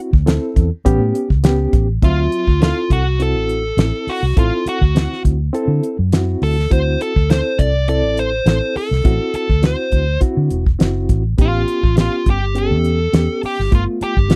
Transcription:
Already playing: reed electric piano E4 F#4
0.13 fingered electric bass D2, kick
0.26 reed electric piano C4 E4 A4, snare, closed hi-hat
0.56 fingered electric bass E2, kick, closed hi-hat
0.85 fingered electric bass A1, reed electric piano B3 C#4 G4, kick, closed hi-hat
0.99 fingered electric bass A2
1.15 closed hi-hat
1.30 fingered electric bass C#2, kick
1.44 reed electric piano B3 C#4 G4, snare, closed hi-hat
1.73 fingered electric bass A1, kick, closed hi-hat
2.02 fingered electric bass D2, reed electric piano F#3 C4 E5, lead electric guitar F4, kick, closed hi-hat
2.32 closed hi-hat
2.47 fingered electric bass D2, kick
2.61 reed electric piano C4 E4 A4, lead electric guitar F4, snare, closed hi-hat
2.90 fingered electric bass C2, lead electric guitar F#4, kick, closed hi-hat
3.19 reed electric piano C4 E4 F#4, lead electric guitar A4, closed hi-hat
3.35 fingered electric bass A1
3.49 closed hi-hat
3.77 fingered electric bass A1, reed electric piano C4 E4 A4, snare, closed hi-hat
4.07 lead electric guitar F#4, muted fingered electric bass stroke, open hi-hat
4.23 fingered electric bass C2
4.36 fingered electric bass A1, reed electric piano C4 E4 A4, lead electric guitar F4, kick, closed hi-hat
4.66 lead electric guitar F#4, muted fingered electric bass stroke, closed hi-hat
4.81 fingered electric bass D2, kick
4.95 reed electric piano C4 E4 F#4, snare, closed hi-hat
5.13 snare
5.24 fingered electric bass D2, kick, closed hi-hat
5.53 reed electric piano C4 E4 A4, closed hi-hat
5.68 fingered electric bass D3
5.83 closed hi-hat
5.99 fingered electric bass F#2
6.12 reed electric piano C4 E4 F#4, snare, closed hi-hat
6.42 fingered electric bass D2, lead electric guitar A4, open hi-hat
6.59 snare
6.70 fingered electric bass D2, reed electric piano C4 E4 F#4, lead electric guitar C5, kick, closed hi-hat
7.01 lead electric guitar A4, closed hi-hat
7.16 fingered electric bass D2, kick
7.30 reed electric piano C4 E4 A4, lead electric guitar C5, snare, closed hi-hat
7.59 fingered electric bass C2, lead electric guitar D5, kick, closed hi-hat
7.88 reed electric piano C4 E4 A4, lead electric guitar D5, closed hi-hat
8.03 fingered electric bass A1
8.17 lead electric guitar C5, closed hi-hat
8.46 fingered electric bass A1, reed electric piano C4 E4 A4, lead electric guitar C5, snare, closed hi-hat
8.76 lead electric guitar A4, muted fingered electric bass stroke, open hi-hat
8.91 fingered electric bass C2, snare
9.04 fingered electric bass A1, reed electric piano C4 E4 F#4, kick, closed hi-hat
9.34 lead electric guitar A4, muted fingered electric bass stroke, closed hi-hat
9.49 fingered electric bass D2, kick
9.62 reed electric piano C4 E4 F#4, snare, closed hi-hat
9.66 lead electric guitar C5
9.92 fingered electric bass D2, kick, closed hi-hat
10.20 reed electric piano C4 E4 F#4, kick, closed hi-hat
10.37 fingered electric bass D3
10.50 fingered electric bass E1, closed hi-hat
10.66 kick
10.79 fingered electric bass F#1, reed electric piano C4 E4 F#4, snare, closed hi-hat
11.09 fingered electric bass A1, kick, closed hi-hat
11.38 fingered electric bass A1, reed electric piano B3 C#4 G4, lead electric guitar F4, kick, closed hi-hat
11.68 closed hi-hat
11.83 fingered electric bass A1, kick
11.96 reed electric piano B3 C#4 G4, snare, closed hi-hat
12.01 lead electric guitar F4
12.26 fingered electric bass G1, kick, closed hi-hat
12.30 lead electric guitar G4
12.55 reed electric piano B3 C#4 G4, lead electric guitar A4, closed hi-hat
12.71 fingered electric bass E2
12.85 closed hi-hat
13.12 fingered electric bass E2, reed electric piano B3 C#4 G4, snare, closed hi-hat
13.43 lead electric guitar G4, muted fingered electric bass stroke, open hi-hat
13.59 fingered electric bass G1, snare
13.71 fingered electric bass G1, reed electric piano A3 B3 F4, lead electric guitar F4, kick, closed hi-hat
14.01 lead electric guitar G4, muted fingered electric bass stroke, closed hi-hat
14.17 fingered electric bass G1, kick
14.28 reed electric piano A3 B3 F4, snare, closed hi-hat

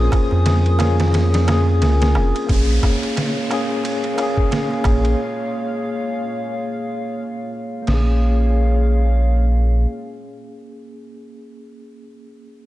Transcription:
Already playing: tine electric piano A#3 C#4 G#4, synth drone C4 C5, analog synth pad F4 A#4 G#5 D#6
0.12 kick, ride, darbuka tek
0.31 analog synth bass F2, darbuka tek
0.46 snare, ride, darbuka tek
0.66 ride
0.78 tine electric piano A#3 C#4 G#4, snare, ride, darbuka tek
1.00 snare, ride, darbuka tek
1.13 snare, ride, darbuka tek
1.33 snare, ride, darbuka tek
1.45 tine electric piano A#3, ride, darbuka tek
1.49 tine electric piano C#4 G#4, snare
1.67 darbuka tek
1.82 analog synth bass C#2, snare, ride, darbuka tek
2.01 snare, ride, darbuka tek
2.15 analog synth bass F1, darbuka tek
2.35 ride, darbuka tek
2.47 analog synth bass A#1, tine electric piano A#3 C#4, analog synth pad A#3 G#4 C#5 F5, kick, ride, downlifter, darbuka tek
2.54 tine electric piano G#4
2.83 kick, ride, darbuka tek
3.02 ride, darbuka tek
3.17 snare, ride, darbuka tek
3.50 tine electric piano A#3 C#4 G#4, ride, darbuka tek
3.71 darbuka tek
3.84 ride, darbuka tek
4.04 ride, darbuka tek
4.15 tine electric piano A#3 C#4, ride, darbuka tek
4.23 tine electric piano G#4
4.37 kick, darbuka tek
4.51 snare, ride, darbuka tek
4.71 darbuka tek
4.84 analog synth bass A#1, kick, ride, darbuka tek
5.04 ride, darbuka tek
7.82 tine electric piano A#3
7.87 analog synth bass A#1, analog synth pad A#3 G#4 C#5 F5, tine electric piano C#4, snare, crash
7.94 tine electric piano G#4

